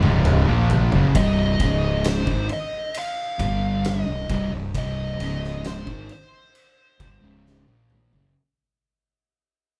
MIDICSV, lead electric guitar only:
0, 0, Header, 1, 2, 480
1, 0, Start_track
1, 0, Tempo, 900901
1, 612, Time_signature, 4, 2, 24, 8
1, 5220, End_track
2, 0, Start_track
2, 0, Title_t, "Lead electric guitar"
2, 0, Program_c, 0, 29
2, 619, Note_on_c, 0, 75, 98
2, 1108, Note_off_c, 0, 75, 0
2, 1109, Note_on_c, 0, 72, 94
2, 1323, Note_off_c, 0, 72, 0
2, 1348, Note_on_c, 0, 75, 85
2, 1586, Note_off_c, 0, 75, 0
2, 1590, Note_on_c, 0, 77, 107
2, 2070, Note_off_c, 0, 77, 0
2, 2072, Note_on_c, 0, 75, 87
2, 2399, Note_off_c, 0, 75, 0
2, 2548, Note_on_c, 0, 75, 88
2, 3021, Note_on_c, 0, 72, 84
2, 3033, Note_off_c, 0, 75, 0
2, 3256, Note_off_c, 0, 72, 0
2, 3262, Note_on_c, 0, 72, 67
2, 4196, Note_off_c, 0, 72, 0
2, 5220, End_track
0, 0, End_of_file